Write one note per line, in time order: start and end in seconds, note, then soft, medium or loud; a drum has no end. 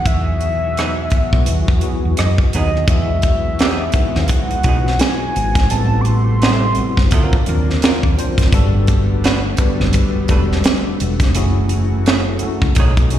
0.00 2.84 B2 medium
0.00 1.33 F#3 medium
0.00 2.84 F#3 medium
0.00 1.33 B3 medium
0.00 2.90 D#4 medium
0.00 1.34 E4 medium
0.00 1.35 F#4 medium
0.00 0.11 G#4 medium
0.00 2.84 G#4 medium
0.05 1.08 E2 medium
0.05 2.85 F#4 medium
0.05 2.18 E5 loud
0.05 kick loud
0.05 closed hi-hat medium
0.41 closed hi-hat soft
0.77 0.92 F#3 medium
0.77 0.93 B3 medium
0.77 0.93 D#4 medium
0.77 0.93 G#4 medium
0.77 cross-stick medium
0.77 closed hi-hat medium
1.10 muted fretless electric bass stroke soft
1.10 kick medium
1.10 closed hi-hat medium
1.33 1.45 B1 medium
1.33 1.72 F#3 medium
1.33 1.73 B3 medium
1.33 1.73 E4 medium
1.33 1.73 F#4 medium
1.33 kick medium
1.33 cross-stick soft
1.46 1.66 D#2 medium
1.46 closed hi-hat medium
1.68 1.81 E2 medium
1.68 kick medium
1.81 2.66 F#3 medium
1.81 2.66 B3 medium
1.81 2.67 E4 medium
1.81 2.66 F#4 medium
1.81 2.67 G#4 medium
1.81 closed hi-hat medium
2.05 2.16 E2 medium
2.17 2.36 F#2 medium
2.17 2.32 D#5 medium
2.17 muted hollow-body jazz guitar stroke soft
2.17 cross-stick loud
2.17 closed hi-hat medium
2.38 kick medium
2.53 2.84 D#2 medium
2.53 2.69 F#3 medium
2.53 2.69 B3 medium
2.53 2.70 D#4 medium
2.53 2.70 G#4 medium
2.53 2.86 D#5 medium
2.53 closed hi-hat medium
2.76 cross-stick soft
2.87 3.90 E2 medium
2.87 5.67 E3 medium
2.87 5.67 F#3 medium
2.87 3.71 F#3 medium
2.87 5.67 G#3 medium
2.87 3.72 B3 medium
2.87 3.72 E4 medium
2.87 7.07 F#4 medium
2.87 3.72 F#4 medium
2.87 3.72 G#4 medium
2.87 4.26 E5 loud
2.87 kick loud
2.87 closed hi-hat medium
3.22 kick medium
3.22 closed hi-hat soft
3.59 3.82 F#3 medium
3.59 3.82 B3 medium
3.59 3.83 D#4 medium
3.59 3.83 G#4 loud
3.59 snare medium
3.59 closed hi-hat medium
3.92 4.51 F#3 medium
3.92 4.51 B3 medium
3.92 4.52 D#4 medium
3.92 4.52 E4 medium
3.92 4.52 G#4 medium
3.92 muted fretless electric bass stroke soft
3.92 kick medium
3.92 closed hi-hat medium
4.15 4.28 D#2 medium
4.15 snare soft
4.24 4.30 F5 medium
4.24 closed hi-hat medium
4.29 5.01 F#5 loud
4.29 kick medium
4.51 muted fretless electric bass stroke soft
4.51 closed hi-hat soft
4.63 4.95 B1 medium
4.63 5.48 F#3 medium
4.63 4.77 F#3 medium
4.63 5.48 B3 medium
4.63 4.78 B3 medium
4.63 5.49 D#4 medium
4.63 5.49 E4 medium
4.63 4.73 F4 medium
4.63 kick medium
4.63 closed hi-hat medium
4.68 4.78 D#4 medium
4.68 4.78 G#4 medium
4.73 5.52 F#4 medium
4.87 snare soft
4.99 5.72 G#5 loud
4.99 snare loud
4.99 closed hi-hat medium
5.36 5.66 G#1 medium
5.36 closed hi-hat medium
5.55 kick medium
5.55 snare soft
5.55 closed hi-hat medium
5.69 6.73 A1 loud
5.69 8.49 C3 medium
5.69 7.10 G3 medium
5.69 6.54 G3 medium
5.69 7.10 A3 medium
5.69 6.54 B3 medium
5.69 6.55 C4 medium
5.69 6.55 E4 medium
5.69 5.79 G#4 medium
5.69 6.02 A5 loud
5.69 closed hi-hat medium
5.79 6.58 A4 medium
6.01 6.07 D6 medium
6.05 7.47 C6 loud
6.05 closed hi-hat medium
6.42 6.64 G3 medium
6.42 6.65 C4 medium
6.42 6.65 E4 medium
6.42 6.65 A4 loud
6.42 snare medium
6.42 closed hi-hat medium
6.75 7.12 G3 medium
6.75 7.12 B3 medium
6.75 7.12 C4 medium
6.75 7.12 E4 medium
6.75 7.13 F#4 medium
6.75 muted fretless electric bass stroke soft
6.75 closed hi-hat medium
6.97 7.10 G1 medium
6.97 kick medium
6.97 snare soft
7.11 7.30 D2 loud
7.11 11.31 D3 medium
7.11 7.35 F#3 medium
7.11 8.51 A#3 medium
7.11 7.35 C4 medium
7.11 8.51 D4 medium
7.11 7.35 F4 medium
7.11 7.36 A#4 medium
7.11 kick medium
7.11 closed hi-hat medium
7.33 kick medium
7.46 7.78 D#2 loud
7.46 8.04 F#3 medium
7.46 8.04 C4 medium
7.46 8.05 D4 medium
7.46 8.05 F4 medium
7.46 8.05 A#4 medium
7.46 closed hi-hat medium
7.70 snare soft
7.82 7.98 F#3 medium
7.82 7.98 C4 medium
7.82 7.98 F4 medium
7.82 7.99 A#4 medium
7.82 muted fretless electric bass stroke soft
7.82 snare loud
7.82 closed hi-hat medium
8.03 8.16 D#2 medium
8.03 kick medium
8.17 8.46 F#3 medium
8.17 8.46 C4 medium
8.17 8.47 D4 medium
8.17 8.47 F4 medium
8.17 8.47 C5 loud
8.17 closed hi-hat medium
8.38 8.54 F1 medium
8.38 kick medium
8.38 snare soft
8.38 closed hi-hat medium
8.52 9.55 G1 medium
8.52 11.32 G3 medium
8.52 9.36 G3 loud
8.52 13.19 A3 medium
8.52 11.32 B3 medium
8.52 9.37 B3 medium
8.52 9.37 D4 medium
8.52 9.37 F#4 medium
8.52 9.37 A4 loud
8.52 kick loud
8.52 closed hi-hat medium
8.87 kick medium
8.87 closed hi-hat medium
9.24 9.39 A3 medium
9.24 9.39 D4 medium
9.24 9.40 F#4 medium
9.24 9.40 B4 medium
9.24 snare medium
9.24 closed hi-hat medium
9.57 10.16 G3 medium
9.57 10.16 B3 medium
9.57 10.16 D4 medium
9.57 10.17 F#4 medium
9.57 10.17 B4 medium
9.57 muted fretless electric bass stroke soft
9.57 kick medium
9.57 closed hi-hat medium
9.80 9.93 F#1 medium
9.80 snare soft
9.93 kick medium
9.93 closed hi-hat medium
10.16 muted fretless electric bass stroke soft
10.28 10.60 E1 medium
10.28 11.13 G3 medium
10.28 10.42 A3 medium
10.28 11.13 B3 medium
10.28 11.13 D4 medium
10.28 10.42 D4 medium
10.28 11.14 F#4 medium
10.28 10.42 F#4 medium
10.28 11.14 A4 loud
10.28 10.43 B4 medium
10.28 kick medium
10.28 closed hi-hat medium
10.52 snare soft
10.64 snare loud
10.64 closed hi-hat medium
11.00 11.37 E1 medium
11.00 closed hi-hat medium
11.20 kick medium
11.20 snare soft
11.20 closed hi-hat medium
11.34 12.38 F#1 loud
11.34 12.75 E3 medium
11.34 13.19 F#3 medium
11.34 12.19 A3 loud
11.34 12.19 C#4 loud
11.34 12.19 E4 medium
11.34 12.74 F#4 medium
11.34 12.19 F#4 medium
11.34 12.20 G#4 loud
11.34 closed hi-hat medium
11.69 closed hi-hat medium
12.06 12.21 A3 medium
12.06 12.22 E4 medium
12.06 12.22 G#4 medium
12.06 12.22 C#5 loud
12.06 snare medium
12.06 closed hi-hat medium
12.39 12.76 A3 medium
12.39 12.76 C#4 medium
12.39 12.77 E4 medium
12.39 12.77 F#4 medium
12.39 12.77 A4 medium
12.39 muted fretless electric bass stroke soft
12.39 closed hi-hat medium
12.62 12.75 C#2 medium
12.62 kick medium
12.75 12.95 B1 medium
12.75 13.19 C#3 medium
12.75 12.92 A3 medium
12.75 13.19 D#4 medium
12.75 12.93 D#4 medium
12.75 kick medium
12.75 closed hi-hat medium
12.79 12.93 G#4 medium
12.79 12.93 C#5 medium
12.97 13.10 B2 medium
12.97 kick medium
12.97 closed hi-hat soft
13.10 13.19 B1 medium
13.10 13.19 A3 medium
13.10 13.19 C#4 medium
13.10 13.19 D#4 medium
13.10 13.19 F#4 medium
13.10 13.19 G#4 medium
13.10 closed hi-hat medium